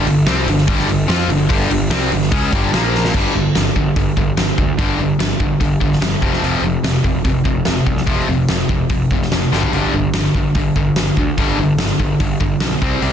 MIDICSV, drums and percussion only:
0, 0, Header, 1, 2, 480
1, 0, Start_track
1, 0, Tempo, 411805
1, 1750, Time_signature, 4, 2, 24, 8
1, 15299, End_track
2, 0, Start_track
2, 0, Title_t, "Drums"
2, 78, Note_on_c, 9, 46, 55
2, 194, Note_off_c, 9, 46, 0
2, 308, Note_on_c, 9, 46, 76
2, 310, Note_on_c, 9, 38, 107
2, 424, Note_off_c, 9, 46, 0
2, 427, Note_off_c, 9, 38, 0
2, 556, Note_on_c, 9, 46, 59
2, 668, Note_on_c, 9, 38, 32
2, 672, Note_off_c, 9, 46, 0
2, 784, Note_off_c, 9, 38, 0
2, 788, Note_on_c, 9, 46, 78
2, 792, Note_on_c, 9, 36, 100
2, 904, Note_off_c, 9, 46, 0
2, 909, Note_off_c, 9, 36, 0
2, 921, Note_on_c, 9, 38, 33
2, 1037, Note_off_c, 9, 38, 0
2, 1038, Note_on_c, 9, 46, 60
2, 1154, Note_off_c, 9, 46, 0
2, 1277, Note_on_c, 9, 46, 68
2, 1280, Note_on_c, 9, 38, 94
2, 1394, Note_off_c, 9, 46, 0
2, 1396, Note_off_c, 9, 38, 0
2, 1514, Note_on_c, 9, 46, 58
2, 1631, Note_off_c, 9, 46, 0
2, 1749, Note_on_c, 9, 36, 97
2, 1752, Note_on_c, 9, 46, 80
2, 1865, Note_off_c, 9, 36, 0
2, 1868, Note_off_c, 9, 46, 0
2, 1994, Note_on_c, 9, 46, 61
2, 2111, Note_off_c, 9, 46, 0
2, 2224, Note_on_c, 9, 46, 81
2, 2226, Note_on_c, 9, 38, 105
2, 2341, Note_off_c, 9, 46, 0
2, 2343, Note_off_c, 9, 38, 0
2, 2468, Note_on_c, 9, 46, 57
2, 2585, Note_off_c, 9, 46, 0
2, 2585, Note_on_c, 9, 38, 30
2, 2702, Note_off_c, 9, 38, 0
2, 2702, Note_on_c, 9, 46, 70
2, 2703, Note_on_c, 9, 36, 101
2, 2818, Note_off_c, 9, 46, 0
2, 2819, Note_off_c, 9, 36, 0
2, 2944, Note_on_c, 9, 36, 100
2, 2949, Note_on_c, 9, 46, 55
2, 3060, Note_off_c, 9, 36, 0
2, 3065, Note_off_c, 9, 46, 0
2, 3190, Note_on_c, 9, 46, 61
2, 3192, Note_on_c, 9, 38, 94
2, 3306, Note_off_c, 9, 46, 0
2, 3309, Note_off_c, 9, 38, 0
2, 3438, Note_on_c, 9, 38, 56
2, 3550, Note_off_c, 9, 38, 0
2, 3550, Note_on_c, 9, 38, 81
2, 3661, Note_on_c, 9, 49, 89
2, 3664, Note_on_c, 9, 36, 97
2, 3667, Note_off_c, 9, 38, 0
2, 3778, Note_off_c, 9, 49, 0
2, 3780, Note_off_c, 9, 36, 0
2, 4141, Note_on_c, 9, 46, 53
2, 4143, Note_on_c, 9, 38, 101
2, 4258, Note_off_c, 9, 46, 0
2, 4260, Note_off_c, 9, 38, 0
2, 4381, Note_on_c, 9, 36, 67
2, 4498, Note_off_c, 9, 36, 0
2, 4616, Note_on_c, 9, 46, 50
2, 4619, Note_on_c, 9, 36, 94
2, 4732, Note_off_c, 9, 46, 0
2, 4735, Note_off_c, 9, 36, 0
2, 4859, Note_on_c, 9, 36, 82
2, 4976, Note_off_c, 9, 36, 0
2, 5097, Note_on_c, 9, 46, 47
2, 5099, Note_on_c, 9, 38, 91
2, 5213, Note_off_c, 9, 46, 0
2, 5216, Note_off_c, 9, 38, 0
2, 5339, Note_on_c, 9, 36, 76
2, 5455, Note_off_c, 9, 36, 0
2, 5578, Note_on_c, 9, 46, 46
2, 5579, Note_on_c, 9, 36, 104
2, 5694, Note_off_c, 9, 46, 0
2, 5695, Note_off_c, 9, 36, 0
2, 6063, Note_on_c, 9, 46, 53
2, 6065, Note_on_c, 9, 38, 100
2, 6179, Note_off_c, 9, 46, 0
2, 6181, Note_off_c, 9, 38, 0
2, 6295, Note_on_c, 9, 36, 75
2, 6412, Note_off_c, 9, 36, 0
2, 6536, Note_on_c, 9, 36, 99
2, 6542, Note_on_c, 9, 46, 46
2, 6652, Note_off_c, 9, 36, 0
2, 6659, Note_off_c, 9, 46, 0
2, 6776, Note_on_c, 9, 36, 79
2, 6892, Note_off_c, 9, 36, 0
2, 6905, Note_on_c, 9, 38, 34
2, 7017, Note_on_c, 9, 46, 45
2, 7019, Note_off_c, 9, 38, 0
2, 7019, Note_on_c, 9, 38, 99
2, 7134, Note_off_c, 9, 46, 0
2, 7136, Note_off_c, 9, 38, 0
2, 7252, Note_on_c, 9, 36, 90
2, 7369, Note_off_c, 9, 36, 0
2, 7379, Note_on_c, 9, 38, 30
2, 7496, Note_off_c, 9, 38, 0
2, 7504, Note_on_c, 9, 46, 48
2, 7620, Note_off_c, 9, 46, 0
2, 7975, Note_on_c, 9, 46, 54
2, 7978, Note_on_c, 9, 38, 102
2, 8092, Note_off_c, 9, 46, 0
2, 8094, Note_off_c, 9, 38, 0
2, 8209, Note_on_c, 9, 36, 72
2, 8326, Note_off_c, 9, 36, 0
2, 8446, Note_on_c, 9, 46, 46
2, 8448, Note_on_c, 9, 36, 97
2, 8562, Note_off_c, 9, 46, 0
2, 8565, Note_off_c, 9, 36, 0
2, 8686, Note_on_c, 9, 36, 81
2, 8802, Note_off_c, 9, 36, 0
2, 8918, Note_on_c, 9, 46, 46
2, 8920, Note_on_c, 9, 38, 88
2, 9034, Note_off_c, 9, 46, 0
2, 9037, Note_off_c, 9, 38, 0
2, 9167, Note_on_c, 9, 36, 76
2, 9284, Note_off_c, 9, 36, 0
2, 9292, Note_on_c, 9, 38, 32
2, 9407, Note_on_c, 9, 46, 55
2, 9409, Note_off_c, 9, 38, 0
2, 9409, Note_on_c, 9, 36, 99
2, 9523, Note_off_c, 9, 46, 0
2, 9525, Note_off_c, 9, 36, 0
2, 9888, Note_on_c, 9, 46, 53
2, 9891, Note_on_c, 9, 38, 98
2, 10005, Note_off_c, 9, 46, 0
2, 10007, Note_off_c, 9, 38, 0
2, 10132, Note_on_c, 9, 36, 74
2, 10248, Note_off_c, 9, 36, 0
2, 10366, Note_on_c, 9, 46, 48
2, 10373, Note_on_c, 9, 36, 102
2, 10482, Note_off_c, 9, 46, 0
2, 10490, Note_off_c, 9, 36, 0
2, 10616, Note_on_c, 9, 36, 84
2, 10732, Note_off_c, 9, 36, 0
2, 10750, Note_on_c, 9, 38, 32
2, 10859, Note_on_c, 9, 46, 48
2, 10861, Note_off_c, 9, 38, 0
2, 10861, Note_on_c, 9, 38, 90
2, 10976, Note_off_c, 9, 46, 0
2, 10978, Note_off_c, 9, 38, 0
2, 11107, Note_on_c, 9, 38, 54
2, 11223, Note_off_c, 9, 38, 0
2, 11224, Note_on_c, 9, 43, 81
2, 11340, Note_on_c, 9, 46, 48
2, 11341, Note_off_c, 9, 43, 0
2, 11457, Note_off_c, 9, 46, 0
2, 11812, Note_on_c, 9, 46, 53
2, 11815, Note_on_c, 9, 38, 105
2, 11929, Note_off_c, 9, 46, 0
2, 11931, Note_off_c, 9, 38, 0
2, 12058, Note_on_c, 9, 36, 76
2, 12174, Note_off_c, 9, 36, 0
2, 12292, Note_on_c, 9, 46, 48
2, 12299, Note_on_c, 9, 36, 106
2, 12408, Note_off_c, 9, 46, 0
2, 12415, Note_off_c, 9, 36, 0
2, 12540, Note_on_c, 9, 36, 75
2, 12656, Note_off_c, 9, 36, 0
2, 12774, Note_on_c, 9, 46, 47
2, 12776, Note_on_c, 9, 38, 93
2, 12891, Note_off_c, 9, 46, 0
2, 12893, Note_off_c, 9, 38, 0
2, 13020, Note_on_c, 9, 36, 74
2, 13136, Note_off_c, 9, 36, 0
2, 13263, Note_on_c, 9, 36, 94
2, 13263, Note_on_c, 9, 46, 53
2, 13379, Note_off_c, 9, 36, 0
2, 13379, Note_off_c, 9, 46, 0
2, 13735, Note_on_c, 9, 46, 55
2, 13737, Note_on_c, 9, 38, 112
2, 13851, Note_off_c, 9, 46, 0
2, 13854, Note_off_c, 9, 38, 0
2, 13982, Note_on_c, 9, 36, 66
2, 14099, Note_off_c, 9, 36, 0
2, 14222, Note_on_c, 9, 36, 102
2, 14223, Note_on_c, 9, 46, 49
2, 14338, Note_off_c, 9, 36, 0
2, 14340, Note_off_c, 9, 46, 0
2, 14460, Note_on_c, 9, 36, 83
2, 14576, Note_off_c, 9, 36, 0
2, 14689, Note_on_c, 9, 46, 49
2, 14692, Note_on_c, 9, 38, 93
2, 14806, Note_off_c, 9, 46, 0
2, 14808, Note_off_c, 9, 38, 0
2, 14941, Note_on_c, 9, 36, 94
2, 15057, Note_off_c, 9, 36, 0
2, 15177, Note_on_c, 9, 46, 50
2, 15294, Note_off_c, 9, 46, 0
2, 15299, End_track
0, 0, End_of_file